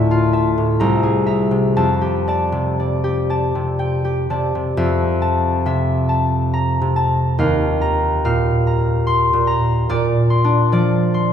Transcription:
0.00 0.83 D2 medium
0.00 0.57 A2 medium
0.00 0.32 E5 medium
0.00 0.83 F5 medium
0.00 0.32 A5 medium
0.11 0.83 F4 soft
0.33 1.26 E5 soft
0.33 0.83 A5 soft
0.58 0.84 A2 soft
0.80 1.80 C2 medium
0.80 1.25 A#5 medium
1.03 1.80 G#4 medium
1.26 1.80 E5 soft
1.26 1.80 A#5 soft
1.51 1.80 C3 soft
1.77 4.76 F2 medium
1.77 2.27 A5 medium
2.01 3.03 G4 soft
2.28 2.79 D5 soft
2.28 3.29 A5 soft
2.52 3.54 C3 soft
2.80 3.29 D5 soft
3.04 4.03 G4 soft
3.30 4.29 D5 soft
3.30 4.29 A5 soft
3.55 4.29 C3 soft
3.79 7.69 G5 soft
4.05 7.95 G4 soft
4.30 4.54 C3 soft
4.30 4.81 D5 soft
4.30 5.21 A5 soft
4.55 4.82 C3 soft
4.77 7.43 F2 medium
4.77 5.65 E5 medium
5.22 6.08 A5 medium
5.66 6.80 C3 soft
5.66 7.43 E5 medium
6.09 6.95 A5 soft
6.54 7.27 A#5 medium
6.81 7.43 C3 soft
6.96 7.43 A5 medium
7.39 9.91 D#2 medium
7.39 8.24 F5 medium
7.81 8.66 A#5 medium
8.25 9.32 A#2 soft
8.25 11.33 F5 medium
8.67 9.46 A#5 soft
9.07 9.76 C6 medium
9.33 9.88 A#2 medium
9.47 11.33 A#5 medium
9.89 11.33 A#2 medium
9.89 10.71 D5 medium
10.30 11.13 C6 medium
10.44 11.33 D4 medium
10.72 11.33 F3 medium
10.72 11.33 D5 medium
11.14 11.33 C6 medium

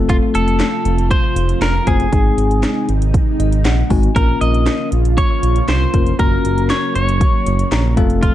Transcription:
0.00 0.19 F1 loud
0.00 2.10 C3 medium
0.00 2.10 F3 medium
0.00 0.65 A3 medium
0.00 2.10 A3 medium
0.00 0.65 C4 medium
0.00 0.65 F4 medium
0.00 2.10 F4 medium
0.00 0.65 A4 loud
0.09 0.16 F4 loud
0.09 kick loud
0.09 closed hi-hat medium
0.34 0.61 F1 loud
0.34 1.11 A4 loud
0.34 closed hi-hat medium
0.48 closed hi-hat soft
0.60 snare loud
0.60 clap medium
0.60 closed hi-hat medium
0.85 1.12 F1 loud
0.85 closed hi-hat medium
0.98 closed hi-hat medium
1.11 1.61 C5 loud
1.11 kick medium
1.11 closed hi-hat medium
1.36 1.54 F1 loud
1.36 closed hi-hat medium
1.49 closed hi-hat medium
1.61 1.79 F1 medium
1.61 1.88 A#4 loud
1.61 snare loud
1.61 clap loud
1.61 closed hi-hat medium
1.87 2.05 F#1 medium
1.87 2.06 A3 medium
1.87 2.06 C4 medium
1.87 2.06 F4 medium
1.87 2.85 G#4 medium
1.87 2.06 C5 medium
1.87 kick medium
1.87 closed hi-hat medium
2.00 closed hi-hat medium
2.13 2.30 G#1 loud
2.13 4.14 C3 medium
2.13 4.14 D#3 medium
2.13 2.88 G#3 medium
2.13 4.14 G#3 medium
2.13 2.88 C4 medium
2.13 2.88 D#4 medium
2.13 4.14 D#4 medium
2.13 2.88 G#4 medium
2.13 kick loud
2.13 closed hi-hat medium
2.38 2.65 G#1 loud
2.38 closed hi-hat medium
2.51 closed hi-hat soft
2.63 snare loud
2.63 clap medium
2.63 closed hi-hat medium
2.89 3.16 G#1 loud
2.89 closed hi-hat medium
3.02 closed hi-hat medium
3.14 kick medium
3.14 closed hi-hat medium
3.40 3.67 G#1 loud
3.40 3.63 D#5 medium
3.40 closed hi-hat medium
3.52 closed hi-hat medium
3.65 3.83 A#1 medium
3.65 3.89 F#5 medium
3.65 snare loud
3.65 clap loud
3.65 closed hi-hat medium
3.90 4.08 G#1 medium
3.90 4.09 G#3 medium
3.90 4.09 C4 medium
3.90 4.09 D#4 medium
3.90 4.09 F#4 loud
3.90 4.14 G#5 medium
3.90 kick medium
3.90 open hi-hat medium
4.03 closed hi-hat medium
4.16 4.34 A#1 loud
4.16 6.17 C#3 medium
4.16 6.17 F3 medium
4.16 4.91 A#3 medium
4.16 7.94 A#3 medium
4.16 4.91 C#4 medium
4.16 4.91 F4 medium
4.16 6.17 F4 medium
4.16 4.91 A#4 medium
4.16 4.41 A#4 loud
4.16 kick loud
4.16 closed hi-hat medium
4.41 4.68 A#1 loud
4.41 4.89 D#5 loud
4.41 closed hi-hat medium
4.54 closed hi-hat soft
4.66 snare loud
4.66 clap medium
4.66 closed hi-hat medium
4.92 5.19 A#1 loud
4.92 closed hi-hat medium
5.05 closed hi-hat medium
5.17 5.68 C#5 loud
5.17 kick medium
5.17 closed hi-hat medium
5.43 5.61 A#1 loud
5.43 closed hi-hat loud
5.56 closed hi-hat medium
5.68 5.86 C2 loud
5.68 6.19 C5 loud
5.68 snare loud
5.68 clap loud
5.68 closed hi-hat medium
5.94 6.12 F1 medium
5.94 6.13 A#3 medium
5.94 6.13 C#4 medium
5.94 6.13 F4 medium
5.94 6.13 A#4 medium
5.94 kick medium
5.94 closed hi-hat medium
6.06 closed hi-hat medium
6.19 6.37 F#1 loud
6.19 7.96 C#3 medium
6.19 7.96 F#3 medium
6.19 6.94 A#3 medium
6.19 6.94 C#4 medium
6.19 6.94 F#4 medium
6.19 7.96 F#4 medium
6.19 6.94 A#4 medium
6.19 6.70 A#4 loud
6.19 kick loud
6.19 closed hi-hat medium
6.45 6.71 F#1 loud
6.45 closed hi-hat medium
6.58 closed hi-hat soft
6.70 6.94 C#5 loud
6.70 snare loud
6.70 clap medium
6.70 closed hi-hat medium
6.95 7.22 F#1 loud
6.95 7.93 C#5 loud
6.95 closed hi-hat medium
7.09 closed hi-hat medium
7.21 kick medium
7.21 closed hi-hat medium
7.46 7.64 F#1 loud
7.46 closed hi-hat medium
7.59 closed hi-hat medium
7.72 7.99 A#1 medium
7.72 7.95 A#5 medium
7.72 snare loud
7.72 clap loud
7.72 closed hi-hat medium
7.97 8.33 F1 loud
7.97 8.35 C3 medium
7.97 8.35 F3 medium
7.97 8.35 A3 medium
7.97 8.35 C4 medium
7.97 8.35 F4 medium
7.97 8.35 A4 loud
7.97 8.21 F5 medium
7.97 kick medium
7.97 closed hi-hat medium
8.10 closed hi-hat medium
8.23 8.35 F4 medium
8.23 kick loud
8.23 closed hi-hat medium

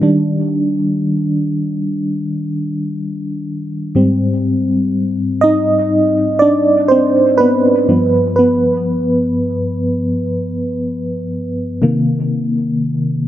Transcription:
0.02 3.91 D#3 medium
0.02 3.91 G3 soft
0.02 3.91 D4 medium
3.95 5.38 G#2 medium
3.95 5.39 G3 soft
3.95 5.39 C4 medium
5.41 6.37 D#4 medium
5.41 6.43 D#5 loud
6.39 6.87 D4 medium
6.39 6.91 D5 medium
6.88 7.36 C4 medium
6.88 7.40 C5 medium
7.38 7.88 B3 medium
7.38 8.35 B4 medium
7.88 9.32 G2 medium
7.88 9.32 F3 soft
7.88 8.38 B3 medium
8.36 9.82 B3 medium
8.36 9.80 B4 medium
11.82 13.25 C3 medium
11.82 13.26 D#3 soft
11.82 13.26 A#3 medium

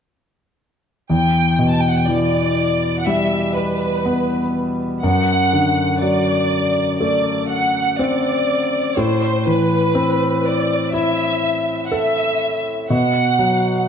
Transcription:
1.10 4.99 E2 soft
1.10 1.69 G5 medium
1.59 3.52 B2 soft
1.72 1.81 A5 medium
1.80 1.90 G5 medium
1.89 1.99 F#5 medium
1.98 2.07 G5 medium
2.08 4.01 E3 soft
2.08 2.99 D5 medium
2.99 3.06 F#5 soft
3.06 4.99 G3 soft
3.06 3.55 E5 medium
3.55 4.50 B4 medium
4.06 5.01 B3 soft
5.03 8.93 F#2 soft
5.03 5.97 F#5 medium
5.53 7.45 D3 soft
6.02 7.94 F#3 soft
6.02 6.99 D5 medium
7.00 8.93 A3 soft
7.00 7.46 D5 medium
7.50 7.98 F#5 medium
7.99 8.94 C4 soft
7.99 8.97 D5 medium
8.97 12.86 A2 soft
8.97 9.46 C5 medium
9.47 11.39 E3 soft
9.47 10.45 B4 medium
9.95 11.88 C4 soft
10.46 10.94 D5 medium
10.94 12.86 E4 soft
10.94 11.81 E5 medium
11.86 11.92 F#5 soft
11.92 12.87 A4 soft
11.92 12.67 E5 medium
12.90 13.88 B2 soft
12.90 13.85 F#5 medium
13.39 13.88 F#3 soft

